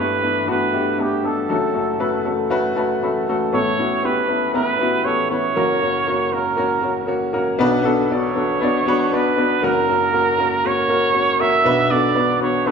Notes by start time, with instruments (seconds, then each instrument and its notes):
Already playing: upright piano G1 G2 A3 B3 D4 E4
0.00 upright piano G4, trumpet B4
0.21 upright piano A3 B3 D4 E4
0.46 upright piano A3 B3 D4 F#4
0.50 trumpet B4
0.73 upright piano A3 B3 D4 G4
0.98 upright piano A3 B3 D4 G4, trumpet G4
1.23 upright piano A3 B3 D4 A4
1.28 trumpet A4
1.48 upright piano F#1 F#2 A3 C#4 F#4 A4
1.74 upright piano A3 C#4 F#4 A4
1.99 upright piano A3 C#4 F#4 B4
2.24 upright piano A3 C#4 F#4 A4 E5
2.50 upright piano A3 C#4 F#4 B4 F#5
2.76 upright piano A3 C#4 F#4 B4 A5
3.02 upright piano A3 C#4 F#4 A4 B5
3.28 upright piano A3 C#4 F#4 A4
3.53 upright piano A1 A2 B3 C#4 E4 A4, trumpet C#5
3.79 upright piano B3 C#4 E4 F#4
4.03 upright piano B3 C#4 E4 G4, trumpet B4
4.28 upright piano B3 C#4 E4 B4
4.54 upright piano B3 C#4 E4 B4, trumpet B4
4.79 upright piano B3 C#4 E4 F#4
5.05 upright piano B3 C#4 E4 A4, trumpet C#5
5.30 upright piano B3 C#4 E4 B4, trumpet C#5
5.56 upright piano F#1 F#2 A#3 C#4 F#4 A#4
5.81 upright piano A#3 C#4 F#4 C#5
6.07 upright piano A#3 C#4 F#4 C#5
6.32 upright piano A#3 C#4 F#4 A#4, trumpet A#4
6.57 upright piano A#3 C#4 F#4 C#5
6.82 upright piano A#3 C#4 F#4 C#5
7.07 upright piano A#3 C#4 F#4 C#5
7.33 upright piano A#3 C#4 F#4 A#4
7.59 upright piano B1 B2 B3 D4 F#4 B4
7.83 upright piano B3 D4 F#4 A4
8.11 upright piano B3 D4 F#4 D5
8.15 trumpet C#5
8.36 upright piano B3 D4 F#4 A4
8.61 upright piano B3 D4 F#4 D5
8.86 upright piano B3 D4 F#4 B4
9.12 upright piano B3 D4 F#4 D5, trumpet B4
9.38 upright piano B3 D4 F#4 B4
9.62 upright piano F#1 F#2 A#3 C#4 F#4 A#4, trumpet A#4
9.88 upright piano A#3 C#4 F#4 A#4
10.12 upright piano A#3 C#4 F#4 A#4
10.38 upright piano A#3 C#4 F#4 A#4
10.64 upright piano A#3 C#4 F#4 A#4, trumpet C#5
10.88 upright piano A#3 C#4 F#4 A#4
11.14 upright piano A#3 C#4 F#4
11.39 upright piano A#3 C#4 F#4 A#4, trumpet E5
11.64 upright piano B1 B2 B3 D4 F#4 B4
11.90 upright piano B3 D4 F#4 A4, trumpet D5
12.15 upright piano B3 D4 F#4 B4
12.41 upright piano B3 D4 F#4 B4, trumpet C#5
12.66 upright piano B3 D4 F#4 A4, trumpet B4